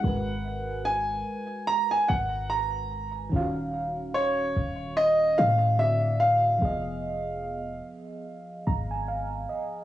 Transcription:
Already playing: grand piano F#5
0.01 808-style bass G#1, fm electric piano G#3 F#4
0.05 fm electric piano A#4 B4
0.85 grand piano G#5
1.67 grand piano A#5
1.91 grand piano G#5
2.08 808-style bass G#1, grand piano F#5
2.50 grand piano A#5
3.30 808-style bass D#1, fm electric piano D#3 C#4
3.34 fm electric piano F4 F5
3.40 fm electric piano F#4
4.14 grand piano C#5
4.56 808-style bass D#1
4.97 grand piano D#5
5.38 808-style bass A2, grand piano F5
5.78 fm electric piano D3 C4 F#4 D5, grand piano E5
6.20 grand piano F5
6.58 808-style bass F1, fm electric piano F3 B3
6.62 fm electric piano G#4 D#5
8.67 808-style bass G#1, fm electric piano A#5
8.91 fm electric piano G#5
9.08 fm electric piano F5
9.49 fm electric piano D#5

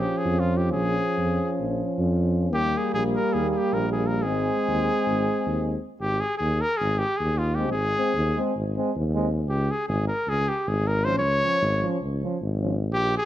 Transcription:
Already playing: trombone F3, euphonium C#4
0.00 trumpet G4
0.18 trumpet G#4
0.25 tuba F2
0.40 trumpet F4
0.57 trumpet G4
0.73 tuba A#1, trumpet G#4
1.17 tuba F2
1.60 tuba A#1
1.98 tuba F2
2.51 tuba D#2, trombone G3, euphonium A#3, trumpet G4
2.77 trumpet G#4
2.93 tuba A#1, trumpet G#4
3.16 trumpet A#4
3.33 tuba D#2, trumpet G#4
3.50 trumpet G#4
3.58 trumpet G4
3.73 tuba A#1, trumpet A#4
3.92 trumpet G#4
4.07 trumpet A#4
4.22 trombone G#3, euphonium C4, trumpet G#4
4.27 tuba G#1
4.67 tuba D#2
5.06 tuba G#1
5.46 tuba D#2
6.00 tuba G#1, trumpet G4
6.20 trumpet G#4
6.38 tuba D#2, trumpet G#4
6.61 trumpet A#4
6.77 tuba G#1, trumpet G#4
6.99 trumpet G4
7.17 tuba D#2, trumpet G#4
7.38 trumpet F4
7.55 trombone G#3, euphonium C4, trumpet G4
7.72 tuba G#1, trumpet G#4
7.98 trombone G#3, euphonium C4
8.14 tuba D#2
8.36 trombone G#3, euphonium C4
8.55 tuba G#1
8.77 trombone G#3, euphonium C4
8.96 tuba D#2
9.15 trombone G#3, euphonium C4
9.47 tuba C#2, trumpet G4
9.71 trumpet G#4
9.88 tuba G#1, trumpet G#4
10.08 trumpet A#4
10.27 tuba C#2, trumpet G#4
10.49 trumpet G4
10.67 tuba G#1, trumpet G#4
10.87 trumpet A#4
11.05 trombone F3, euphonium C#4, trumpet C5
11.19 tuba C#2, trumpet C#5
11.42 trombone F3, euphonium C#4
11.61 tuba G#1
11.81 trombone F3, euphonium C#4
12.01 tuba C#2
12.22 trombone F3, euphonium C#4
12.42 tuba G#1
12.60 trombone F3, euphonium C#4
12.93 tuba A#1, trumpet G4
13.17 trumpet G#4

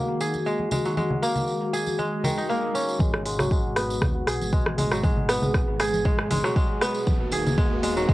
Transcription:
Already playing: analog synth pad D#3 A#3 F#4, kora F#3 G#3 A#3
0.21 kora G#4, tambourine
0.34 tambourine, high conga
0.46 kora G#3, tambourine
0.59 high conga
0.71 kora G#3, tambourine, high conga, low conga
0.85 kora F#3, tambourine
0.97 analog synth pad G#3, kora G#3, tambourine, high conga
1.10 low conga
1.22 kora A#3, tambourine
1.35 tambourine, low conga
1.48 tambourine
1.73 kora G#4, tambourine
1.86 tambourine, high conga
1.99 kora G#3, tambourine, swell, high conga
2.24 kora D#3, tambourine, high conga, low conga
2.37 kora D#4, tambourine
2.49 kora A#3, tambourine
2.75 kora C#4, tambourine
2.89 tambourine
2.99 detuned saw bass G#1, analog synth pad B2 G#3 F#4, kora G#3, kick, mid tom, tambourine, riser, high conga
3.14 cross-stick
3.25 kora G#3, open hi-hat, tambourine
3.39 kora F#3, cross-stick, tambourine, low conga
3.51 kora G#3, kick, mid tom, tambourine
3.76 kora B3, cross-stick, mid tom, open hi-hat, tambourine
3.90 tambourine
4.02 detuned saw bass D#2, kick, cross-stick, tambourine, low conga
4.27 detuned saw bass B1, kora G#4, cross-stick, open hi-hat, tambourine
4.41 detuned saw bass G#1, tambourine, high conga
4.53 kora G#3, kick, mid tom, tambourine
4.66 cross-stick, high conga
4.78 kora G#3, mid tom, open hi-hat, tambourine, high conga, low conga
4.91 detuned saw bass G#1, kora F#3, cross-stick, tambourine
5.03 detuned saw bass G#1, kora G#3, analog synth pad G#4, kick, mid tom, tambourine, high conga
5.17 low conga
5.29 kora B3, cross-stick, open hi-hat, tambourine
5.42 detuned saw bass G#1, tambourine, low conga
5.54 kick, cross-stick, mid tom, tambourine
5.80 kora G#4, cross-stick, mid tom, open hi-hat, tambourine
5.93 tambourine, high conga
6.05 kora G#3, kick, mid tom, tambourine, high conga
6.19 cross-stick
6.31 kora G#3, open hi-hat, tambourine, high conga, low conga
6.44 kora F#3, cross-stick, mid tom, tambourine
6.56 kora G#3, kick, mid tom, tambourine
6.81 kora B3, cross-stick, open hi-hat, tambourine
6.95 tambourine
7.07 detuned saw bass D#1, analog synth pad D#3 A#3 F#4, kick, mid tom, tambourine, high conga
7.32 kora G#4, open hi-hat, mid tom, tambourine
7.46 tambourine, low conga
7.58 kora G#3, kick, mid tom, tambourine
7.83 kora G#3, mid tom, open hi-hat, tambourine
7.97 kora F#3, tambourine
8.08 detuned saw bass A#1, kora G#3, kick, mid tom, tambourine, low conga

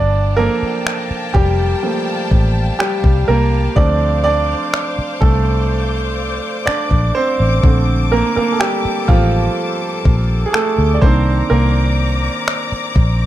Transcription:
Already playing: fingered electric bass G1, grand piano D4 D5, string section F5 G5 A5
0.37 grand piano F3 A#3 A4 A#4
0.63 muted fingered electric bass stroke
0.87 finger snap
1.11 muted fingered electric bass stroke
1.34 fingered electric bass F1, grand piano G3 G4, kick
1.83 grand piano F3 A3 A#3
2.31 fingered electric bass A1, kick
2.79 grand piano G3 G4, finger snap
3.04 fingered electric bass C2, kick
3.28 fingered electric bass C2, grand piano A#3 A#4
3.76 fingered electric bass D2, grand piano F3 A3 C4 D4 D5, string section C5 D6, kick
4.24 grand piano D4 D5
4.74 finger snap
4.99 muted fingered electric bass stroke
5.21 fingered electric bass C2, grand piano A3 A4, kick
6.66 grand piano D4 D5, finger snap, muted fingered electric bass stroke
6.91 fingered electric bass A#1, kick
7.15 grand piano C4 C5
7.40 fingered electric bass A1
7.64 fingered electric bass A#1, grand piano D3 A3 C4, string section A4 A5, kick
8.12 grand piano A#3 A#4
8.36 grand piano A#3 A#4, muted fingered electric bass stroke
8.52 grand piano A4
8.60 grand piano G3 G4, finger snap
8.85 muted fingered electric bass stroke
9.08 fingered electric bass A1, grand piano F3 F4, kick
10.05 fingered electric bass A#1, kick
10.46 grand piano G#4
10.53 grand piano A3 A4, finger snap
10.78 fingered electric bass D2
10.94 grand piano D5
11.02 fingered electric bass C2, grand piano D#3 A#3 C4 D4 C5, string section D5 A#5 D6, kick
11.50 fingered electric bass C2, grand piano A#3 A#4
12.48 finger snap
12.72 muted fingered electric bass stroke
12.96 fingered electric bass A#1, kick

